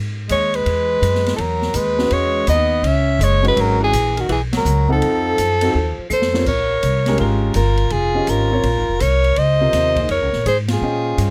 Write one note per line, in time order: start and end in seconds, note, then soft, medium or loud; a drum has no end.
0.00 0.28 G#2 medium
0.29 0.65 D#2 medium
0.29 0.53 G#3 medium
0.29 0.57 C#5 loud
0.29 hi-hat pedal medium
0.29 ride medium
0.53 1.33 G#3 medium
0.53 1.35 B4 loud
0.53 ride soft
0.66 1.01 E2 medium
0.66 ride medium
1.02 1.37 F#2 medium
1.02 hi-hat pedal soft
1.02 ride medium
1.15 snare soft
1.26 snare soft
1.26 ride soft
1.34 1.74 E2 medium
1.34 1.39 E3 soft
1.34 1.77 F#3 medium
1.34 1.42 A4 medium
1.34 ride medium
1.41 1.78 A#4 medium
1.62 snare soft
1.74 2.10 D#2 medium
1.74 2.11 G#3 medium
1.74 2.14 B4 loud
1.74 hi-hat pedal medium
1.74 ride medium
1.98 2.45 G#3 medium
1.98 2.45 C#4 medium
1.98 2.45 F#4 medium
1.98 2.45 B4 medium
1.98 snare soft
2.10 2.46 E2 medium
2.10 2.47 G#3 medium
2.10 2.48 C#5 loud
2.10 ride medium
2.47 2.82 D#2 medium
2.47 2.85 B3 medium
2.47 2.89 D#5 loud
2.47 hi-hat pedal medium
2.47 ride medium
2.83 3.18 C#2 medium
2.83 3.23 C#4 medium
2.83 ride medium
2.88 3.26 E5 medium
3.19 3.55 F#1 medium
3.19 3.43 G#3 medium
3.19 hi-hat pedal medium
3.19 ride medium
3.24 3.46 C#5 loud
3.43 3.90 G#3 medium
3.43 3.57 G#3 medium
3.43 3.89 C#4 medium
3.43 3.90 F#4 medium
3.43 3.90 B4 medium
3.43 ride soft
3.48 3.62 B4 loud
3.56 3.92 G#1 medium
3.56 3.79 F#3 medium
3.56 ride medium
3.61 3.82 A#4 loud
3.80 4.18 E3 medium
3.80 4.22 G#4 loud
3.93 4.28 A#1 medium
3.93 hi-hat pedal medium
3.93 ride medium
4.16 4.28 D#3 medium
4.16 ride soft
4.20 4.31 F#4 medium
4.29 4.64 B1 medium
4.29 4.39 E3 medium
4.29 4.42 G#4 medium
4.29 ride medium
4.53 4.86 F#3 medium
4.53 snare medium
4.53 ride medium
4.57 4.89 A#4 medium
4.65 5.00 C#2 medium
4.65 hi-hat pedal medium
4.88 6.07 F3 medium
4.88 5.35 C4 medium
4.88 5.35 D#4 medium
4.88 5.36 A4 medium
4.88 5.35 F#5 medium
4.88 kick soft
4.92 6.08 A4 loud
5.02 5.37 F2 medium
5.02 ride medium
5.38 5.73 F#2 medium
5.38 hi-hat pedal medium
5.38 ride medium
5.61 5.73 C4 medium
5.61 5.73 D#4 medium
5.61 5.73 F#4 medium
5.61 5.73 A4 medium
5.61 ride medium
5.75 5.96 D#2 medium
5.98 muted upright bass stroke soft
6.09 6.45 F2 medium
6.09 6.44 A4 medium
6.09 6.45 C5 medium
6.09 hi-hat pedal medium
6.22 snare medium
6.34 6.45 C4 medium
6.34 6.46 F4 medium
6.34 6.46 A#4 medium
6.34 6.46 C#5 medium
6.34 snare medium
6.46 6.81 A#1 medium
6.46 7.15 A#4 medium
6.46 7.16 C#5 medium
6.46 kick medium
6.46 crash medium
6.83 7.18 C2 medium
6.83 hi-hat pedal soft
6.83 ride medium
7.06 7.53 G#3 medium
7.06 7.53 C#4 medium
7.06 7.54 G4 medium
7.06 7.54 A#4 medium
7.06 snare soft
7.06 ride soft
7.18 7.54 G#1 medium
7.18 7.53 F4 medium
7.18 7.54 A#4 medium
7.18 ride medium
7.54 7.91 G1 medium
7.54 7.92 F4 medium
7.54 7.94 A#4 medium
7.54 hi-hat pedal soft
7.54 ride medium
7.77 ride soft
7.90 8.26 F1 medium
7.90 8.28 F4 medium
7.90 8.31 G#4 medium
7.90 ride medium
8.15 8.49 C#4 medium
8.15 8.49 G4 medium
8.15 8.49 C5 medium
8.15 8.49 D#5 medium
8.27 8.63 G#1 medium
8.27 9.02 F4 medium
8.27 9.03 A#4 medium
8.27 hi-hat pedal medium
8.27 ride medium
8.52 8.63 C4 medium
8.52 8.63 F4 medium
8.52 8.63 A#4 medium
8.52 8.64 C#5 medium
8.63 8.76 A#1 medium
8.63 ride medium
8.76 8.88 G#1 medium
8.89 9.00 F1 medium
9.00 9.36 C2 medium
9.00 9.38 A#4 medium
9.00 9.40 C#5 loud
9.00 hi-hat pedal medium
9.00 ride medium
9.24 ride soft
9.36 9.72 C#2 medium
9.36 10.09 C5 loud
9.36 10.10 D#5 loud
9.36 ride medium
9.61 9.95 C3 medium
9.61 9.94 F4 medium
9.61 9.95 A#4 medium
9.61 9.95 C5 medium
9.72 10.08 D#2 medium
9.72 snare soft
9.72 hi-hat pedal soft
9.72 ride medium
9.96 10.08 A#3 medium
9.96 10.09 D#4 medium
9.96 10.09 G#4 medium
9.96 10.09 D#5 medium
9.96 kick medium
9.96 ride soft
10.09 10.21 F2 medium
10.09 10.43 A#4 medium
10.09 10.44 C#5 medium
10.09 ride medium
10.21 10.33 C#2 medium
10.33 10.45 A#1 medium
10.33 snare soft
10.46 10.81 G#2 medium
10.46 10.57 G#4 medium
10.46 10.58 C5 medium
10.46 hi-hat pedal soft
10.46 ride medium
10.68 11.30 F4 medium
10.68 snare medium
10.68 ride medium
10.73 11.30 G#4 medium
10.81 11.17 A#2 medium
10.81 11.30 C#4 medium
10.81 11.30 C5 soft
10.81 11.30 D#5 medium
10.81 11.30 G5 medium
11.18 11.30 G2 medium
11.18 hi-hat pedal medium
11.18 ride medium